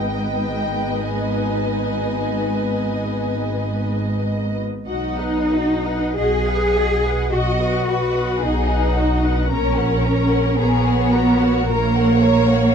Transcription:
Already playing: G#1 G#2 B3 D#4 B4 D#5 G5
1.10 G#5
4.86 B1 D#4 F#4 D#5 F#5
5.18 B4 D#5 F#5
5.51 F#4 D#5 F#5
5.84 B4 D#5 F#5
6.16 B1 F#4 G#4 D#5 F#5
6.47 B4 D#5 F#5
6.74 F#4 D#5 F#5
7.03 B4 D#5 F#5
7.30 B1 F#4 D#5 F#5
7.59 B4 D#5 F#5
7.87 F#4 B4 D#5 F#5
8.13 B4 D#5 F#5
8.40 B1 D#4 F#4 G#4 D#5 F#5
8.67 B4 D#5 F#5
8.94 F#4 D#5 F#5
9.22 B4 D#5 F#5
9.49 A#1 C#4 A#4 C#5 A#5
9.76 A#4 C#5 F#5
10.03 A#4 C#5 A#5
10.30 A#4 C#5 F#5
10.57 A#1 B3 G#4 A#4 C#5 A#5
10.84 A#4 C#5 F#5
11.11 F#4 A#4 C#5 A#5
11.39 A#4 C#5 F#5
11.67 A#1 A#3 A#4 C#5 A#5
11.95 A#4 C#5 F#5
12.19 A#4 C#5 A#5
12.48 A#4 C#5 F#5

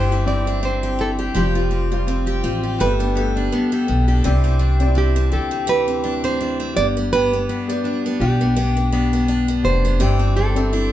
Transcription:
Already playing: G1 G2 E3 C4 D4 E4 G4 C5
0.11 C4 E4
0.26 C4 E4 G4 D5
0.47 D4 E4
0.63 C4 C5
0.83 G4
0.99 C4 E4 A4
1.19 D4 G4
1.35 F1 F3 G3 F4 G4 C5
1.55 C4 F4
1.71 C4 G4
1.91 G3 F4 C5
2.07 C4
2.26 G4
2.43 A1 C4 F4
2.63 F4 G4
2.79 G1 G2 G3 A3 G4 A4 B4
2.99 B3 D4
3.15 A3 B3 G4 A4 B4
3.36 D4
3.52 B3
3.72 G4 A4
3.88 B1 B3 D4
4.08 D4 G4
4.24 C2 C3 E3 C4 E4 G4 D5
4.44 C4
4.59 D4
4.80 C4 D4 D5
4.88 E4
4.95 D4 E4 G4
5.16 C4
5.32 D2 D4 G4 A4
5.51 C4
5.67 E3 E4 G4 B4
5.88 C4
6.04 D4
6.24 C4 C5
6.41 D4 E4
6.60 C4
6.75 G1 G2 B3 G4 D5
6.97 B3
7.13 G2 B3 G4 B4
7.33 B3
7.49 B3 D4
7.67 B3 G4 D5
7.84 D4
8.06 B3
8.20 B1 D4 G4
8.41 B3
8.56 B3 D4 G4
8.77 B3
8.92 B3 D4
9.13 B3
9.28 D4
9.48 B3
9.63 F1 B3 D4 G4 C5 D5
9.85 B3
9.99 G1 G2 E3 C4 E4 G4 D5
10.19 C4
10.37 C4 D4 A4
10.55 C4 E4 A4
10.72 D4 E4

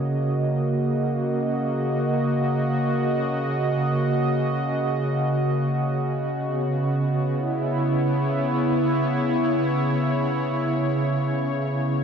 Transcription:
Already playing: C#3 A#3 F#4 C#5 D#5
6.47 B3
7.39 E4
7.57 C#5

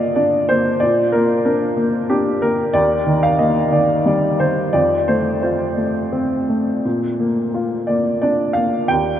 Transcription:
Already playing: A#2 A#3 F4 D5 D#5 F5
0.16 D4 D5
0.49 A#3 C5
0.80 A#2 D5
1.12 A#3 A#4
1.45 D4 A#4
1.77 A#3
2.10 D4 G4
2.42 A#3 A#4
2.73 D#2 D5
3.06 D#3
3.23 F5
3.39 A#3 D#5
3.72 D#3 D5
4.06 G3 D5
4.40 D#3 C5
4.73 F2 D5
5.08 A3 C5
5.42 F4 C5
5.78 A3
6.12 C4
6.49 A3
6.85 A#2
7.20 A#3
7.54 F4
7.87 A#3 D5
8.22 D4 D5
8.53 A#3 F5
8.88 D#2 G5

